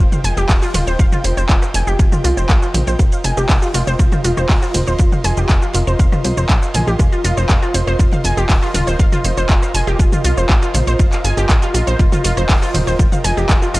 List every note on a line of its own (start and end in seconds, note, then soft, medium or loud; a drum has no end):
0.00 13.80 F4 medium
0.00 13.80 A#4 medium
0.00 13.80 D#5 medium
0.00 4.34 G5 medium
0.12 0.21 F5 medium
0.12 mid tom medium
0.12 ride soft
0.12 shaker soft
0.24 0.33 F1 medium
0.24 0.34 G#5 loud
0.24 open hi-hat loud
0.24 ride medium
0.24 shaker medium
0.37 0.45 F1 medium
0.37 0.46 G4 loud
0.37 shaker soft
0.49 0.58 D#1 loud
0.49 0.55 F4 medium
0.49 kick loud
0.49 snare loud
0.49 clap loud
0.49 open hi-hat medium
0.49 shaker medium
0.62 0.72 F4 loud
0.62 snare medium
0.62 shaker soft
0.74 0.83 D#1 medium
0.74 0.84 F4 loud
0.74 cross-stick medium
0.74 open hi-hat loud
0.74 mid tom medium
0.74 ride medium
0.74 shaker medium
0.87 0.95 D#1 medium
0.87 0.97 C5 loud
0.87 ride soft
0.87 shaker soft
0.99 1.08 F1 loud
0.99 1.05 F5 loud
0.99 kick loud
0.99 ride medium
0.99 shaker medium
1.12 1.24 F4 loud
1.12 mid tom medium
1.12 shaker soft
1.24 1.33 F1 medium
1.24 1.30 C5 medium
1.24 open hi-hat loud
1.24 ride medium
1.24 shaker medium
1.37 1.45 F1 medium
1.37 1.43 C5 loud
1.37 shaker soft
1.49 1.58 F1 medium
1.49 1.59 F4 medium
1.49 kick loud
1.49 snare loud
1.49 clap loud
1.49 ride medium
1.49 shaker medium
1.62 1.71 F5 medium
1.62 cross-stick medium
1.62 shaker soft
1.74 1.83 F1 medium
1.74 1.84 G#5 loud
1.74 open hi-hat loud
1.74 ride medium
1.74 shaker medium
1.87 1.95 F1 medium
1.87 1.96 G4 loud
1.87 shaker soft
1.99 2.08 F1 loud
1.99 2.05 F4 medium
1.99 kick loud
1.99 ride medium
1.99 shaker medium
2.12 2.21 F4 loud
2.12 mid tom medium
2.12 shaker soft
2.24 2.33 C2 medium
2.24 2.34 F4 loud
2.24 open hi-hat loud
2.24 ride medium
2.24 shaker medium
2.37 2.45 F1 medium
2.37 2.46 C5 loud
2.37 shaker soft
2.49 2.58 A#1 loud
2.49 2.55 F5 loud
2.49 kick loud
2.49 cross-stick medium
2.49 snare loud
2.49 clap loud
2.49 ride medium
2.49 shaker medium
2.62 2.74 F4 loud
2.62 shaker soft
2.74 2.83 A#1 medium
2.74 2.80 C5 medium
2.74 open hi-hat loud
2.74 mid tom medium
2.74 ride medium
2.74 shaker medium
2.87 2.95 A#1 medium
2.87 2.93 C5 loud
2.87 shaker soft
2.99 3.08 F1 loud
2.99 3.09 F4 medium
2.99 kick loud
2.99 ride medium
2.99 shaker medium
3.12 3.21 F5 medium
3.12 ride soft
3.12 shaker soft
3.24 3.33 F1 medium
3.24 3.34 G#5 loud
3.24 open hi-hat loud
3.24 ride medium
3.24 shaker medium
3.37 3.45 F1 medium
3.37 3.46 G4 loud
3.37 cross-stick medium
3.37 shaker soft
3.49 3.58 F1 loud
3.49 3.55 F4 medium
3.49 kick loud
3.49 snare loud
3.49 clap loud
3.49 open hi-hat medium
3.49 shaker medium
3.62 3.71 F4 loud
3.62 snare soft
3.62 shaker soft
3.74 3.83 F1 loud
3.74 3.84 F4 loud
3.74 open hi-hat loud
3.74 ride medium
3.74 shaker medium
3.87 3.95 F1 medium
3.87 3.97 C5 loud
3.87 ride soft
3.87 shaker soft
3.99 4.08 F1 loud
3.99 4.05 F4 medium
3.99 kick loud
3.99 ride medium
3.99 shaker medium
4.12 4.21 F4 medium
4.12 mid tom medium
4.12 ride soft
4.12 shaker soft
4.24 4.33 F1 medium
4.24 4.34 F4 loud
4.24 open hi-hat loud
4.24 ride medium
4.24 shaker medium
4.32 12.34 C6 medium
4.37 4.45 F1 medium
4.37 4.47 C5 loud
4.37 cross-stick medium
4.37 shaker soft
4.49 4.58 D#1 loud
4.49 4.55 F5 loud
4.49 kick loud
4.49 snare loud
4.49 clap loud
4.49 open hi-hat medium
4.49 shaker medium
4.62 4.74 F4 loud
4.62 snare soft
4.62 shaker soft
4.74 4.83 D#1 medium
4.74 4.80 C5 medium
4.74 open hi-hat loud
4.74 mid tom medium
4.74 ride medium
4.74 shaker medium
4.86 4.95 D#1 medium
4.86 4.93 C5 loud
4.86 ride soft
4.86 shaker soft
4.98 5.08 F1 loud
4.98 5.09 F4 medium
4.98 kick loud
4.98 ride medium
4.98 shaker medium
5.12 5.22 F5 medium
5.12 mid tom medium
5.12 shaker soft
5.24 5.33 F1 medium
5.24 5.34 G#5 loud
5.24 cross-stick medium
5.24 open hi-hat loud
5.24 ride medium
5.24 shaker medium
5.37 5.45 F1 medium
5.37 5.47 G4 loud
5.37 shaker soft
5.49 5.58 F1 medium
5.49 5.55 F4 medium
5.49 kick loud
5.49 snare loud
5.49 clap loud
5.49 ride medium
5.49 shaker medium
5.62 5.71 F4 loud
5.62 shaker soft
5.73 5.83 F1 loud
5.73 5.84 F4 loud
5.73 open hi-hat loud
5.73 ride medium
5.73 shaker medium
5.87 5.95 F1 medium
5.87 5.96 C5 loud
5.87 shaker soft
5.99 6.08 F1 loud
5.99 6.05 F5 loud
5.99 kick loud
5.99 ride medium
5.99 shaker medium
6.12 6.24 F4 loud
6.12 cross-stick medium
6.12 mid tom medium
6.12 shaker soft
6.24 6.33 C2 medium
6.24 6.30 C5 medium
6.24 open hi-hat medium
6.24 ride medium
6.24 shaker medium
6.37 6.45 F1 medium
6.37 6.43 C5 loud
6.37 shaker soft
6.49 6.58 A#1 loud
6.49 6.59 F4 medium
6.49 kick loud
6.49 snare loud
6.49 clap loud
6.49 ride medium
6.49 shaker medium
6.62 6.71 F5 medium
6.62 shaker soft
6.74 6.83 A#1 medium
6.74 6.84 G#5 loud
6.74 open hi-hat loud
6.74 mid tom medium
6.74 ride medium
6.74 shaker medium
6.87 6.95 A#1 medium
6.87 6.97 G4 loud
6.87 shaker soft
6.99 7.08 F1 loud
6.99 7.05 F4 medium
6.99 kick loud
6.99 cross-stick medium
6.99 ride medium
6.99 shaker medium
7.12 7.22 F4 loud
7.12 shaker soft
7.24 7.33 F1 medium
7.24 7.34 F4 loud
7.24 open hi-hat loud
7.24 ride medium
7.24 shaker medium
7.37 7.45 F1 medium
7.37 7.47 C5 loud
7.37 shaker soft
7.49 7.58 F1 loud
7.49 7.55 F5 loud
7.49 kick loud
7.49 snare loud
7.49 clap loud
7.49 ride medium
7.49 shaker medium
7.62 7.74 F4 loud
7.62 ride soft
7.62 shaker soft
7.74 7.83 F1 loud
7.74 7.80 C5 medium
7.74 open hi-hat loud
7.74 ride medium
7.74 shaker medium
7.87 7.95 F1 medium
7.87 7.93 C5 loud
7.87 cross-stick medium
7.87 ride soft
7.87 shaker soft
7.99 8.08 F1 loud
7.99 8.09 F4 medium
7.99 kick loud
7.99 ride medium
7.99 shaker medium
8.11 8.22 F5 medium
8.11 mid tom medium
8.11 ride soft
8.11 shaker soft
8.24 8.33 F1 medium
8.24 8.34 G#5 loud
8.24 open hi-hat loud
8.24 ride medium
8.24 shaker medium
8.37 8.45 F1 medium
8.37 8.47 G4 loud
8.37 shaker soft
8.49 8.58 D#1 loud
8.49 8.55 F4 medium
8.49 kick loud
8.49 snare loud
8.49 clap loud
8.49 open hi-hat medium
8.49 shaker medium
8.62 8.71 F4 loud
8.62 snare medium
8.62 shaker soft
8.74 8.83 D#1 medium
8.74 8.84 F4 loud
8.74 cross-stick soft
8.74 open hi-hat loud
8.74 mid tom medium
8.74 ride medium
8.74 shaker medium
8.87 8.95 D#1 medium
8.87 8.96 C5 loud
8.87 ride soft
8.87 shaker soft
8.99 9.08 F1 loud
8.99 9.05 F5 loud
8.99 kick loud
8.99 ride medium
8.99 shaker medium
9.12 9.24 F4 loud
9.12 mid tom medium
9.12 shaker soft
9.24 9.33 F1 loud
9.24 9.30 C5 medium
9.24 open hi-hat loud
9.24 ride medium
9.24 shaker medium
9.37 9.45 F1 medium
9.37 9.43 C5 loud
9.37 shaker soft
9.49 9.58 F1 loud
9.49 9.59 F4 medium
9.49 kick loud
9.49 snare loud
9.49 clap loud
9.49 ride medium
9.49 shaker medium
9.62 9.72 F5 medium
9.62 cross-stick soft
9.62 shaker soft
9.74 9.83 F1 medium
9.74 9.84 G#5 loud
9.74 open hi-hat loud
9.74 ride medium
9.74 shaker medium
9.87 9.95 F1 medium
9.87 9.96 G4 loud
9.87 shaker soft
9.99 10.08 F1 loud
9.99 10.05 F4 medium
9.99 kick loud
9.99 ride medium
9.99 shaker medium
10.12 10.22 F4 loud
10.12 mid tom medium
10.12 shaker soft
10.24 10.33 C2 loud
10.24 10.34 F4 loud
10.24 open hi-hat loud
10.24 ride medium
10.24 shaker medium
10.37 10.45 F1 medium
10.37 10.47 C5 loud
10.37 shaker soft
10.49 10.58 A#1 loud
10.49 10.55 F5 loud
10.49 kick loud
10.49 cross-stick soft
10.49 snare loud
10.49 clap loud
10.49 ride medium
10.49 shaker medium
10.62 10.74 F4 loud
10.62 shaker soft
10.74 10.83 A#1 medium
10.74 10.80 C5 medium
10.74 open hi-hat loud
10.74 mid tom medium
10.74 ride medium
10.74 shaker medium
10.87 10.95 A#1 medium
10.87 10.93 C5 loud
10.87 shaker soft
10.99 11.08 G1 loud
10.99 11.09 F4 medium
10.99 kick loud
10.99 ride medium
10.99 shaker medium
11.12 11.22 F5 medium
11.12 clap soft
11.12 shaker soft
11.24 11.33 G1 loud
11.24 11.34 G#5 loud
11.24 open hi-hat loud
11.24 shaker medium
11.37 11.45 G1 medium
11.37 11.46 G4 loud
11.37 cross-stick soft
11.37 shaker soft
11.49 11.58 A#1 loud
11.49 11.55 F4 medium
11.49 kick loud
11.49 snare loud
11.49 clap loud
11.49 open hi-hat medium
11.49 ride medium
11.49 shaker medium
11.62 11.71 F4 loud
11.62 ride soft
11.62 shaker soft
11.74 11.83 A#1 loud
11.74 11.84 F4 loud
11.74 open hi-hat loud
11.74 ride medium
11.74 shaker medium
11.87 11.95 A#1 medium
11.87 11.96 C5 loud
11.87 ride soft
11.87 shaker soft
11.99 12.08 F1 loud
11.99 12.05 F4 medium
11.99 kick loud
11.99 ride medium
11.99 shaker medium
12.12 12.21 F4 loud
12.12 mid tom medium
12.12 ride soft
12.12 shaker soft
12.24 12.33 F1 medium
12.24 12.34 F4 loud
12.24 open hi-hat loud
12.24 ride medium
12.24 shaker medium
12.32 13.80 G5 medium
12.37 12.45 F1 medium
12.37 12.46 C5 loud
12.37 cross-stick soft
12.37 shaker soft
12.49 12.58 D#1 loud
12.49 12.55 F5 loud
12.49 kick loud
12.49 snare loud
12.49 clap loud
12.49 open hi-hat medium
12.49 shaker medium
12.62 12.74 F4 loud
12.62 snare soft
12.62 shaker soft
12.74 12.83 D#1 medium
12.74 12.80 C5 medium
12.74 open hi-hat loud
12.74 mid tom medium
12.74 ride medium
12.74 shaker medium
12.87 12.95 D#1 medium
12.87 12.93 C5 loud
12.87 ride soft
12.87 shaker soft
12.99 13.08 F1 loud
12.99 13.09 F4 medium
12.99 kick loud
12.99 ride medium
12.99 shaker medium
13.12 13.21 F5 medium
13.12 mid tom medium
13.12 shaker soft
13.24 13.33 F1 loud
13.24 13.34 G#5 loud
13.24 cross-stick soft
13.24 open hi-hat loud
13.24 ride medium
13.24 shaker medium
13.37 13.45 F1 medium
13.37 13.46 G4 loud
13.37 shaker soft
13.49 13.58 F1 loud
13.49 13.55 F4 medium
13.49 kick loud
13.49 snare loud
13.49 clap loud
13.49 ride medium
13.49 shaker medium
13.62 13.71 F4 loud
13.62 shaker soft
13.74 13.80 F1 medium
13.74 13.80 F4 loud
13.74 open hi-hat loud
13.74 ride medium
13.74 shaker medium